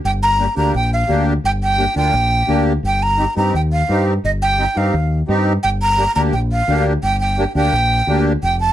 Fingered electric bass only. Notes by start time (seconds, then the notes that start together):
0.04 G1
0.56 D2
0.74 A#1
1.09 D2
1.44 G1
1.96 D2
2.13 A#1
2.48 D2
2.83 G1
3.36 G2
3.54 D#2
3.89 G2
4.24 G1
4.76 G2
4.93 D#2
5.28 G2
5.64 G1
6.16 D2
6.33 A#1
6.68 D2
7.02 G1
7.55 D2
7.72 A#1
8.07 D2
8.42 F1